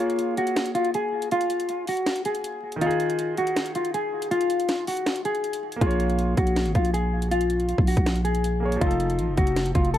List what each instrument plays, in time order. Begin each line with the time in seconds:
Already playing: grand piano A#3 G#4 C#5, clean electric guitar F4
0.10 closed hi-hat
0.19 closed hi-hat
0.37 clean electric guitar F#4, closed hi-hat
0.47 closed hi-hat
0.56 snare, closed hi-hat
0.66 closed hi-hat
0.75 clean electric guitar F4, closed hi-hat
0.85 closed hi-hat
0.94 clean electric guitar G#4, closed hi-hat
1.22 closed hi-hat
1.31 clean electric guitar F4, closed hi-hat
1.41 closed hi-hat
1.50 closed hi-hat
1.60 closed hi-hat
1.69 closed hi-hat
1.87 clean electric guitar F#4, open hi-hat
1.97 closed hi-hat
2.06 snare, closed hi-hat
2.16 closed hi-hat
2.25 clean electric guitar G#4, closed hi-hat
2.35 closed hi-hat
2.44 closed hi-hat
2.72 closed hi-hat
2.76 grand piano D#3
2.81 grand piano D#4, clean electric guitar F4, closed hi-hat
2.86 grand piano G#4
2.91 closed hi-hat
3.00 closed hi-hat
3.10 closed hi-hat
3.19 closed hi-hat
3.37 clean electric guitar F#4, closed hi-hat
3.47 closed hi-hat
3.56 snare, closed hi-hat
3.66 closed hi-hat
3.75 clean electric guitar F4, closed hi-hat
3.85 closed hi-hat
3.94 clean electric guitar G#4, closed hi-hat
4.22 closed hi-hat
4.31 clean electric guitar F4, closed hi-hat
4.41 closed hi-hat
4.50 closed hi-hat
4.60 closed hi-hat
4.69 snare, closed hi-hat
4.87 clean electric guitar F#4, open hi-hat
4.97 closed hi-hat
5.06 snare, closed hi-hat
5.16 closed hi-hat
5.25 clean electric guitar G#4, closed hi-hat
5.35 closed hi-hat
5.44 closed hi-hat
5.53 closed hi-hat
5.72 closed hi-hat
5.76 grand piano A#3
5.81 808-style bass A#1, clean electric guitar F4, grand piano G#4, kick, closed hi-hat
5.86 grand piano C#5
5.91 closed hi-hat
6.00 closed hi-hat
6.10 closed hi-hat
6.19 closed hi-hat
6.37 808-style bass A#1, clean electric guitar F#4, kick, closed hi-hat
6.47 closed hi-hat
6.56 snare, closed hi-hat
6.66 808-style bass G#1, closed hi-hat
6.75 808-style bass A#1, clean electric guitar F4, kick, closed hi-hat
6.85 closed hi-hat
6.94 clean electric guitar G#4, closed hi-hat
7.22 closed hi-hat
7.31 clean electric guitar F4, closed hi-hat
7.41 closed hi-hat
7.50 closed hi-hat
7.60 closed hi-hat
7.69 closed hi-hat
7.78 808-style bass A#1, kick
7.87 clean electric guitar F#4, open hi-hat
7.97 808-style bass A#1, kick, closed hi-hat
8.06 snare, closed hi-hat
8.16 closed hi-hat
8.25 clean electric guitar G#4, closed hi-hat
8.35 closed hi-hat
8.44 closed hi-hat
8.60 grand piano A#3 G#4
8.65 grand piano C#5
8.72 closed hi-hat
8.76 grand piano F3
8.81 808-style bass F1, grand piano D#4, clean electric guitar F4, kick, closed hi-hat
8.86 grand piano A4
8.91 closed hi-hat
9.00 closed hi-hat
9.10 closed hi-hat
9.19 808-style bass A1, closed hi-hat
9.28 808-style bass F1
9.37 808-style bass F1, clean electric guitar F#4, kick, closed hi-hat
9.47 closed hi-hat
9.56 snare, closed hi-hat
9.66 closed hi-hat
9.75 808-style bass F1, clean electric guitar F4, kick, closed hi-hat
9.85 closed hi-hat
9.94 clean electric guitar A4, closed hi-hat